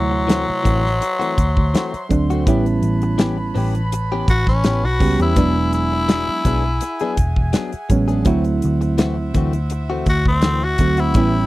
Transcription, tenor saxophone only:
0.00 2.07 F#3 loud
4.30 4.47 F#4 medium
4.49 4.87 C#4 medium
4.85 5.19 F#4 medium
5.22 5.73 E4 medium
5.74 7.14 E4 loud
10.09 10.26 F#4 medium
10.28 10.66 C4 loud
10.64 11.02 F#4 medium
11.00 11.46 E4 medium

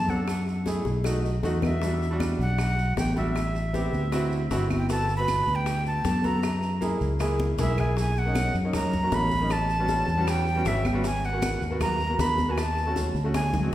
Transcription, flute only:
0.00 0.11 A5 loud
0.10 0.67 F#5 medium
1.64 2.17 E5 medium
2.41 2.94 F#5 medium
2.98 3.16 G5 medium
3.17 4.67 E5 medium
4.78 4.90 G5 medium
4.91 5.14 A5 medium
5.17 5.57 B5 loud
5.55 5.87 G5 medium
5.87 6.26 A5 medium
6.25 6.82 A#5 medium
7.61 7.82 E5 medium
7.80 7.98 G#5 medium
7.99 8.20 G#5 medium
8.19 8.56 F#5 medium
8.76 9.16 A#5 medium
9.14 9.54 B5 loud
9.52 10.31 A5 loud
10.30 10.69 G5 loud
10.67 10.88 E5 medium
10.87 11.05 G5 medium
11.06 11.27 G#5 loud
11.25 11.63 F#5 medium
11.82 12.17 A#5 loud
12.20 12.52 B5 loud
12.51 12.60 G#5 medium
12.59 13.08 A5 medium
13.35 13.71 G#5 medium

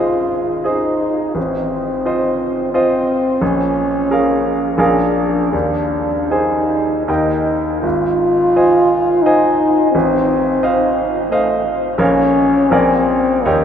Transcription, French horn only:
0.00 0.69 F4 medium
0.68 1.36 D#4 soft
1.37 2.71 C4 soft
2.73 3.44 C4 medium
3.42 4.51 C#4 medium
4.79 5.49 D4 medium
5.53 6.32 D4 soft
6.30 7.06 D#4 soft
7.06 7.82 D#4 soft
7.82 9.24 F4 medium
9.23 9.91 D#4 medium
9.92 11.02 C4 medium
11.30 11.62 A3 soft
11.99 12.72 C#4 medium
12.71 13.44 C4 medium
13.43 13.64 A#3 soft

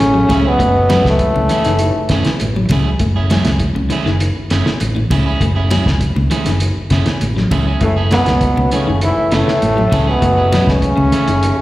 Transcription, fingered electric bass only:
0.01 0.24 A1 medium
0.30 0.53 C#2 medium
0.60 0.95 F#1 loud
1.05 1.28 C#2 medium
1.36 1.47 C#2 medium
1.67 1.90 F#1 loud
1.97 muted fingered electric bass stroke soft
2.10 2.22 F#1 medium
2.27 muted fingered electric bass stroke soft
2.41 2.64 A1 medium
2.70 2.93 C#2 medium
3.00 3.35 F#1 loud
3.47 3.70 C#2 medium
3.77 3.88 C#2 medium
4.06 4.29 F#1 loud
4.37 muted fingered electric bass stroke soft
4.51 4.63 F#1 medium
4.81 5.04 A1 medium
5.11 5.34 C#2 medium
5.41 5.76 F#1 loud
5.86 6.09 C#2 medium
6.17 6.28 C#2 medium
6.47 6.70 F#1 medium
6.77 muted fingered electric bass stroke soft
6.91 7.03 F#1 medium
7.07 muted fingered electric bass stroke soft
7.22 7.45 A1 medium
7.51 7.75 C#2 medium
7.81 8.17 F#1 loud
8.27 8.50 C#2 medium
8.58 8.69 C#2 medium
8.88 9.11 F#1 medium
9.18 muted fingered electric bass stroke soft
9.32 9.44 F#1 medium
9.63 9.86 A1 medium
9.92 10.15 C#2 medium
10.22 10.57 F#1 loud
10.67 10.91 C#2 medium
10.98 11.10 C#2 medium
11.28 11.51 F#1 loud
11.58 muted fingered electric bass stroke soft

